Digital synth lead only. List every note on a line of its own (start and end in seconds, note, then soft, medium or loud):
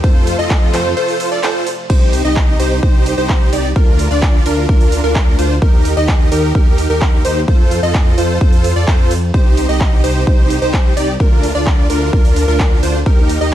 0.04 0.36 C5 loud
0.39 0.71 D#5 loud
0.74 0.94 C5 medium
0.97 1.29 C5 loud
1.32 1.41 D5 medium
1.43 1.69 C5 loud
1.90 2.22 C5 loud
2.25 2.57 D#5 loud
2.60 2.80 C5 medium
2.83 3.15 C5 loud
3.18 3.50 C5 loud
3.53 3.68 D5 medium
3.76 4.08 A#4 loud
4.11 4.43 D5 loud
4.46 4.66 A#4 medium
4.69 5.01 A#4 loud
5.04 5.36 A#4 loud
5.39 5.55 C5 medium
5.62 5.94 A#4 loud
5.97 6.29 D#5 loud
6.32 6.52 A#4 medium
6.55 6.87 A#4 loud
6.90 7.22 A#4 loud
7.25 7.41 C5 medium
7.48 7.80 C5 loud
7.83 8.15 D#5 loud
8.18 8.38 C5 medium
8.41 8.73 C5 loud
8.76 8.85 D5 medium
8.87 9.13 C5 loud
9.34 9.66 C5 loud
9.69 10.01 D#5 loud
10.04 10.24 C5 medium
10.27 10.59 C5 loud
10.62 10.94 C5 loud
10.97 11.13 D5 medium
11.20 11.52 A#4 medium
11.55 11.87 D5 loud
11.90 12.10 A#4 medium
12.13 12.45 A#4 loud
12.48 12.80 A#4 loud
12.83 12.99 C5 medium
13.06 13.38 A#4 loud
13.41 13.54 D#5 loud